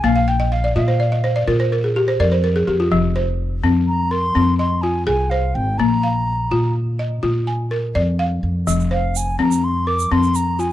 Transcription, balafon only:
Already playing: C5
0.04 A#3 G#5
0.16 F5
0.28 G5
0.40 D#5
0.52 F5
0.64 D5
0.76 F4 D#5
0.88 C5
1.00 D5
1.12 D#5
1.24 C5
1.36 D5
1.48 F4 A#4
1.60 C5
1.72 A#4
1.84 G#4
1.96 G4
2.08 C5
2.20 A#4 D5
2.32 C5
2.44 A#4
2.56 G#4
2.67 G4
2.80 F4
2.92 F3
3.16 C5
3.64 C4
4.11 A#4
4.35 C4
4.59 D#5
4.83 F4
5.07 G#4
5.31 C5
5.80 A#3
6.03 F5
6.51 F4
6.99 D#5
7.23 F4
7.47 G#5
7.71 A#4
7.95 D5
8.19 F5
8.67 F3
8.91 C5
9.39 C4
9.87 A#4
10.12 C4
10.59 F4

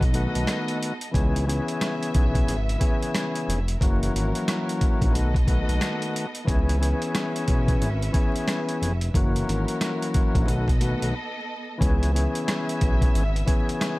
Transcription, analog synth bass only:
Already playing: B1
0.35 B1
1.15 C#2
2.15 B1
2.48 G#1
3.48 F1
3.81 F#1
4.15 G#1
5.02 A#1
5.15 B1
5.69 B1
6.48 C#2
7.48 B1
7.82 G#1
8.82 F1
9.15 F#1
9.48 G#1
10.35 A#1
10.48 B1
11.02 B1
11.81 C#2
12.82 B1
13.15 G#1

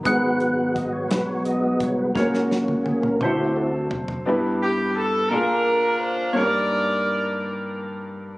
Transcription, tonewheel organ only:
0.06 G#3 B3 F#4 F#5
0.40 F#5
0.75 D#5
0.93 C#5
1.08 B4
1.26 C#5
1.45 D#5
1.64 D#5
1.83 C#5
1.99 B4
2.15 A#3 C#4 F#4 A#4
2.48 F#4
2.84 G#4
3.02 A#4
3.22 C4 E4 F#4 C5
3.56 A4

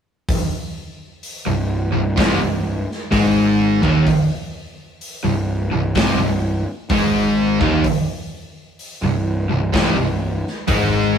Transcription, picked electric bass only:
1.47 C1
1.93 C1
2.18 C1
2.41 C1
3.13 G#1
3.83 D#1
5.24 C1
5.71 C1
5.96 C1
6.19 C1
6.90 G#1
7.61 D#1
9.02 C1
9.50 C1
9.74 C1
9.97 C1
10.68 G#1

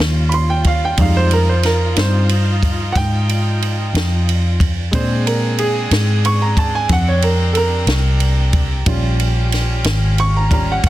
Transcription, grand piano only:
0.29 B5
0.34 C6
0.50 G5
0.67 F5
0.85 G5
0.98 G3 G#3 D#4 F5
1.17 C5
1.33 A#4
1.49 C5
1.66 A#4
1.96 G3 C4 D#4 C5
2.92 F#5
2.97 G5
4.91 G#3 C4 D4 C5
5.27 A#4
5.59 G#4
6.26 C#6
6.42 A#5
6.58 A5
6.75 G#5
6.93 F#5
7.08 C#5
7.24 A#4
7.53 A4
7.57 A#4
8.86 G3 C#4 F4
10.20 C#6
10.37 A#5
10.51 G3 C#4 F4 A#5
10.72 F#5

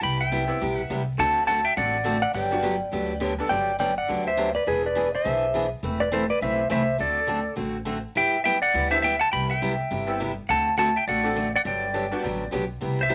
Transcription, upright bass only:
0.02 C2
0.61 B1
0.90 C2
1.18 D2
1.77 A1
2.34 G1
2.93 D2
3.51 G1
4.09 D2
4.68 E1
5.25 B1
5.83 E1
6.41 B1
6.71 C2
7.00 D2
7.58 A1
8.16 G1
8.74 D2
9.33 C2
9.91 G1
10.49 D2
11.07 A1
11.65 G1
12.25 A1
12.53 B1
12.82 C2
13.11 E2

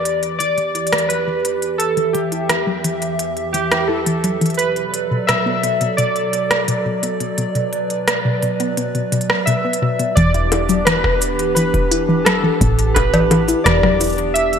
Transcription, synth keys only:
Already playing: D5
0.39 D5
1.09 B4
1.78 A4
2.13 G4
3.53 G4
3.88 A4
4.57 B4
5.27 E5
5.97 D5
9.46 E5
10.15 D5
10.85 B4
11.55 B4
12.25 A4
12.94 B4
13.64 D5
14.34 E5

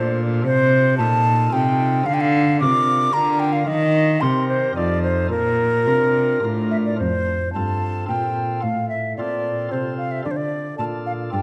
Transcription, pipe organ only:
Already playing: A#2 D4 F4 A4
0.44 C3
1.00 A#2 D#4 F4 A4
1.53 C3 D#4 F4 A4
2.08 D3
2.61 C3 D4 F4 A#4
3.15 D3 D4 F4 A#4
3.68 D#3
4.21 C3 C4 G4 A#4
4.76 F2 D#4 F4 A4
5.30 A#2
5.87 C3 D4 F4 A#4
6.43 A2 D4 F4 A#4
7.00 F2
7.55 G2 C4 F4 A4
8.09 A#2 C4 F4 A4
8.65 A2
9.18 A#2 C4 F4 A4
9.72 C3 C4 F4 A4
10.26 D3
10.79 A#2 D4 F4 A4
11.33 G2 D4 F4 A4

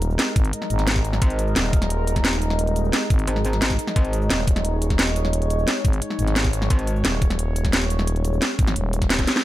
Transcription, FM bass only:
Already playing: D#1
0.36 G#1
0.70 G#1
1.56 D#1
3.10 G#1
4.30 D#1
5.85 G#1
6.19 G#1
7.05 D#1
8.59 G#1
8.76 D#1

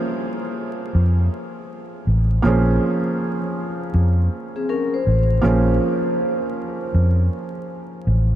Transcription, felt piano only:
Already playing: F3 A#3 C#4 G#4 C5
2.42 F3 A#3 C#4
2.47 G#4 C5
5.42 F3 A#3 C#4 G#4
5.47 C5

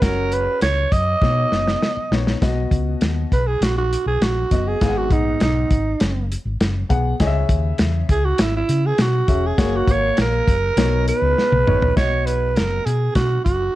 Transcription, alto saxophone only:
0.02 A#4
0.33 B4
0.62 C#5
0.92 D#5
3.33 B4
3.47 G#4
3.63 F#4
3.78 F#4
4.07 G#4
4.23 F#4
4.68 G#4
4.97 F#4
5.13 D#4
5.43 D#4
8.11 G#4
8.25 F#4
8.42 E4
8.56 E4
8.86 G#4
9.01 F#4
9.46 G#4
9.76 F#4
9.92 C#5
10.21 A#4
11.09 B4
11.97 C#5
12.26 B4
12.56 A#4
12.86 G#4
13.15 F#4
13.45 F#4

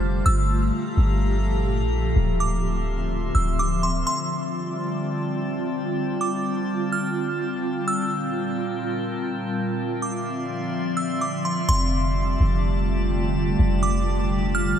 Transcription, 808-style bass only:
Already playing: F1
0.26 G1
0.97 G1
1.81 A#1
2.16 D1
3.35 D1
11.69 F1
12.40 F1
13.59 F1

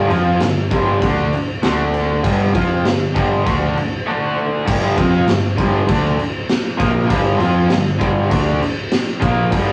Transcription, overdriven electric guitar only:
0.09 F3 C4 F4
0.40 G2 D3
0.71 G2 D3 G3
1.02 D3 A3 D4
1.33 muted overdriven electric guitar stroke
1.63 D3 A3 D4
2.22 G2 D3 G3
2.52 F3 C4 F4
2.85 G2 D3
3.14 G2 D3 G3
3.44 D3 A3 D4
3.77 muted overdriven electric guitar stroke
4.06 D3 A3 D4
4.65 G2 D3 G3
4.96 F3 C4 F4
5.26 G2 D3
5.56 G2 D3 G3
5.85 D3 A3 D4
6.17 muted overdriven electric guitar stroke
6.78 A#2 F3 A#3
7.06 G2 D3 G3
7.38 F3 C4 F4
7.68 G2 D3
7.99 G2 D3 G3
8.29 D3 A3 D4
8.62 muted overdriven electric guitar stroke
9.21 A#2 F3 A#3
9.51 G2 D3 G3

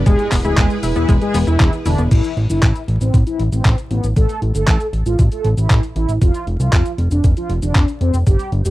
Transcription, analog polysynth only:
0.06 G#3 G#4
0.45 G#3 G#4
0.96 E3 E4
1.22 G#3 G#4
1.47 E3 E4
1.86 D3 D4
2.11 E4
2.50 E4
3.01 C4
3.27 E4
3.52 C4
3.91 B3
4.16 A4
4.55 A4
5.06 F4
5.32 A4
5.57 E4
5.96 E4
6.22 F4
6.60 F4
7.11 D4
7.37 F4
7.63 D4
8.01 C4
8.27 G4
8.65 G4

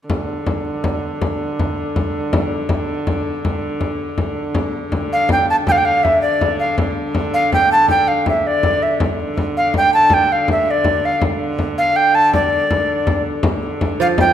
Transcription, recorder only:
5.13 F5
5.32 G5
5.50 A5
5.68 F5 G5
5.78 G5
5.85 F5
6.03 E5
6.22 D5
6.59 F5
7.34 F5
7.53 G5
7.72 A5
7.90 G5
8.08 F5
8.29 E5
8.47 D5
8.83 E5
9.57 F5
9.77 G5
9.94 A5
10.14 G5
10.32 F5
10.52 E5
10.71 D5
11.05 F5
11.78 F5
11.96 G5
12.15 A5
12.35 D5
14.01 F5
14.20 G5

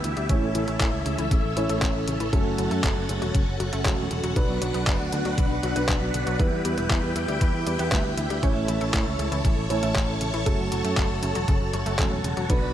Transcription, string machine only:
Already playing: B3 E4 G4 E5
0.30 C#4 A4
2.33 F#4 F#5
4.36 D4 B4
6.39 E4 G4 G5
8.43 A4 C#5 A5
10.47 F#4
12.50 B4 D5 B5

